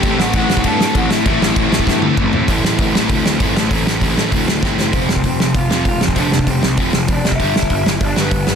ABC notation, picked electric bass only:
X:1
M:4/4
L:1/8
Q:1/4=196
K:Ador
V:1 name="Picked electric bass" clef=bass
A,,, A,,, A,,, A,,, G,,2 A,,, A,, | A,,, A,,, A,,, A,,, G,,2 A,,, A,, | A,,, A,,, A,,, A,,, D,, D,, G,,, A,,, | A,,, A,,, A,,, A,,, D,, D,, G,,, F,,, |
[K:Flyd] F,,, F,,, F,,, F,,, F,,, F,,, F,,, F,,, | F,,, F,,, F,,, C,, F,,, F,,, F,,, F,,, | G,,, G,,, G,,, G,,, G,,, G,,, G,,, G,,, |]